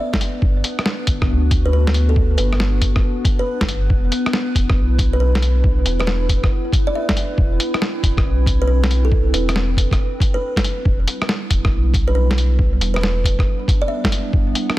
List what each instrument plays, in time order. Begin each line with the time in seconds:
Already playing: ambient pad B3 D4 B4
0.00 kalimba E5
0.13 kick, snare
0.21 closed hi-hat
0.42 sub bass G1, kick
0.63 ambient pad F#4, closed hi-hat
0.79 cross-stick
0.86 snare
1.07 sub bass G1, kick, closed hi-hat
1.22 kick, cross-stick
1.29 sub bass D2
1.51 kick, closed hi-hat
1.66 kalimba B4
1.73 kalimba B4
1.87 snare
1.94 closed hi-hat
2.09 kalimba A4
2.16 kick
2.38 sub bass G1, kalimba B4, closed hi-hat
2.53 cross-stick
2.60 snare
2.81 sub bass G1, kick, closed hi-hat
2.96 kick, cross-stick
3.25 kick, closed hi-hat
3.39 kalimba B4
3.61 sub bass G1, kick, snare
3.69 closed hi-hat
3.90 sub bass E1, kick
4.05 ambient pad E4
4.12 closed hi-hat
4.26 cross-stick
4.33 snare
4.55 sub bass E1, kick, closed hi-hat
4.70 kick, cross-stick
4.76 sub bass B1
4.99 kick, closed hi-hat
5.13 kalimba B4
5.20 kalimba B4
5.35 snare
5.42 closed hi-hat
5.64 kick
5.85 sub bass E1, closed hi-hat
6.00 kalimba B4, cross-stick
6.07 kalimba B4, snare
6.29 sub bass E1, kick, closed hi-hat
6.43 kick, cross-stick
6.72 kick, closed hi-hat
6.87 kalimba D5
6.95 kalimba E5
7.09 kick, snare
7.17 closed hi-hat
7.38 sub bass E1, kick
7.50 ambient pad C4
7.60 closed hi-hat
7.74 cross-stick
7.82 snare
8.03 sub bass E1, kick, closed hi-hat
8.17 kick, cross-stick
8.24 sub bass B1
8.46 kick, closed hi-hat
8.62 kalimba B4
8.68 kalimba B4
8.84 snare
8.91 closed hi-hat
9.05 kalimba A4
9.12 kick
9.33 sub bass E1, kalimba B4, closed hi-hat
9.49 cross-stick, closed hi-hat
9.56 snare
9.77 sub bass E1, kick, closed hi-hat
9.91 kick, cross-stick, closed hi-hat
10.20 kick, closed hi-hat
10.34 kalimba B4
10.56 kick, snare, closed hi-hat
10.64 closed hi-hat
10.85 sub bass E1, ambient pad G3, kick
11.01 ambient pad B3
11.06 ambient pad D4, closed hi-hat
11.22 cross-stick
11.29 snare
11.50 sub bass E1, kick, closed hi-hat
11.65 kick, cross-stick
11.72 sub bass B1
11.94 kick, closed hi-hat
12.08 kalimba B4
12.15 kalimba B4
12.31 snare
12.38 closed hi-hat
12.59 kick
12.80 sub bass E1, closed hi-hat
12.94 kalimba B4, cross-stick
13.01 kalimba B4, snare
13.24 sub bass E1, kick, closed hi-hat
13.39 kick, cross-stick
13.68 kick, closed hi-hat
13.82 kalimba D5
13.88 kalimba E5
14.04 kick, snare
14.12 closed hi-hat
14.33 sub bass G1, kick
14.48 ambient pad F#4
14.55 closed hi-hat
14.70 cross-stick